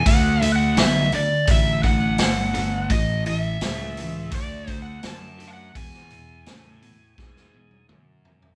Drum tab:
HH |o-o-o-o-o-o-o-o-|o-o-o-o-o-o-o-o-|o-o-o-o---------|
SD |----o-------o---|----o-------o---|-o--o---oo------|
T1 |----------------|----------------|-----------o----|
T2 |----------------|----------------|------------o---|
FT |----------------|----------------|--------------oo|
BD |o-------o-o-----|o-------o-o-----|o-------o-------|